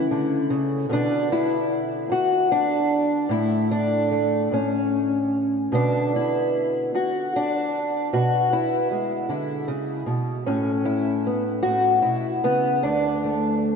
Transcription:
Already playing: C#3 E3 A3 C#4 E4
0.11 D3
0.50 C#3
0.89 B2 D3 B3 D4
1.32 E4
2.09 F#4, muted steel-string acoustic guitar stroke
2.51 D4
3.29 A2 E4
3.71 D4
4.11 A3
4.51 A2 C#4
5.72 B2 D3 B3 D4
6.16 E4
6.94 F#4, muted steel-string acoustic guitar stroke
7.36 D4
8.13 B2 F#4
8.53 E4
8.91 G#3
9.29 D3 E4
9.68 C#3
10.06 B2
10.46 A2 C#4
10.85 E4
11.27 B3
11.63 A2 F#4
12.02 B2 E4
12.44 C#3 B3
12.83 D2 D4
13.24 A3

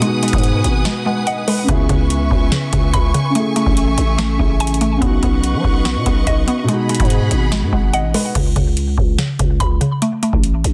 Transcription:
Already playing: B2 B4 F#5 D#6
0.00 G#3 D#4 G#5, closed hi-hat
0.07 F#4
0.23 G#3, closed hi-hat
0.28 closed hi-hat
0.33 G#2, kick, closed hi-hat
0.38 closed hi-hat
0.44 closed hi-hat
0.64 G#1, closed hi-hat
0.85 G#3, snare, closed hi-hat
1.06 G#3 F#5
1.27 D#5 F#5, closed hi-hat
1.48 G#3 B4, open hi-hat
1.64 C#3 B3
1.68 C#2 C#3 E4 E5 G#5 C#6, kick, closed hi-hat
1.73 G#4
1.89 C#2 C#3, kick, closed hi-hat
2.10 closed hi-hat
2.31 C#2, kick
2.52 C#3, snare, closed hi-hat
2.73 C#2 C#3, kick, closed hi-hat
2.93 C#2 B5, kick, closed hi-hat
3.14 C#3, closed hi-hat
3.30 C#3 A3
3.35 A3 E4 E5, closed hi-hat
3.40 G#4
3.56 A3, closed hi-hat
3.66 A1, kick
3.77 closed hi-hat
3.98 A1, closed hi-hat
4.18 A3, snare, closed hi-hat
4.37 A1 C#3 A3 E4, kick
4.42 G#4
4.60 G#5, closed hi-hat
4.67 closed hi-hat
4.74 closed hi-hat
4.81 A3, closed hi-hat
4.97 C#3 B3
5.02 B1 B3 D#4 B4 D#5 F#5 C#6, kick, closed hi-hat
5.07 F#4
5.23 B1 B3, kick, closed hi-hat
5.44 closed hi-hat
5.54 F#3
5.64 B1, kick
5.85 B3, snare, closed hi-hat
5.96 B2
6.06 B1 B3, kick, closed hi-hat
6.27 B1 D#5, kick, closed hi-hat
6.48 B3, closed hi-hat
6.64 B2 G#3
6.69 G#3 D#4 G#4 F#5 B5, closed hi-hat
6.73 F#4
6.89 G#3, closed hi-hat
6.95 closed hi-hat
7.00 G#2, kick, closed hi-hat
7.05 closed hi-hat
7.10 closed hi-hat
7.31 G#1, closed hi-hat
7.52 G#3, snare, closed hi-hat
7.62 G#2
7.73 G#1 G#3 F#5, kick
7.93 D#5 F#5, closed hi-hat
8.04 A1
8.14 G#3 B4, open hi-hat
8.35 C#2 C#3, kick, closed hi-hat, crash
8.56 C#2 C#3, kick, closed hi-hat
8.77 closed hi-hat
8.98 C#2, kick
9.18 C#3, snare, closed hi-hat
9.39 C#2 C#3, kick, closed hi-hat
9.60 C#2 B5, kick, closed hi-hat
9.81 C#3, closed hi-hat
10.02 A3, closed hi-hat
10.23 A3, closed hi-hat
10.33 A1, kick
10.44 closed hi-hat
10.64 A1, closed hi-hat

